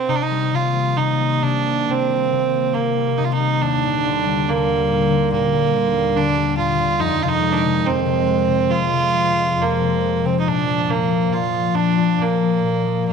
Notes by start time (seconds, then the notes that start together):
Already playing: C4 D4
0.08 C3 D#3 A#3 D#4
0.16 D4
0.22 D#4
0.31 G3
0.53 C3 F4
0.75 G3
0.97 C3 D#4
1.20 G3
1.42 C3 D4
1.65 G3
1.88 C3 C4
2.09 G3
2.32 C3
2.54 G3
2.74 C3 A#3
2.97 G3
3.18 C3 D#4
3.24 F4
3.32 D#4
3.39 G3
3.60 D#2 D3 G3 D4
3.84 A#2
4.06 D3
4.26 G3
4.47 D3 A#3
4.70 G3
4.89 A#2
5.10 D3
5.31 A#2 A#3
5.53 G3
5.73 D3
5.94 G3
6.16 D3 D4
6.37 G3
6.57 A#2 F4
6.79 D3
6.99 F2 D#3 G#3 D#4
7.22 C3 F4
7.28 D#4
7.43 G#3
7.52 D4 D#4
7.65 C3
7.86 F2 C4
8.05 C3
8.26 G#3
8.48 C3
8.69 F2 F3 F4
8.92 C3
9.13 G#3
9.35 C3
9.58 F2 A#3
9.81 C3
10.03 G#3
10.25 C3 C4
10.40 D#4
10.45 A#2 F3 D4 D5
10.66 F3
10.88 A#2 A#3
11.09 F3
11.29 A#2 F4
11.52 F3
11.73 A#2 D4
11.97 F3
12.18 A#2 A#3
12.42 F3
12.63 A#2
12.86 F3
13.09 A#2 A#3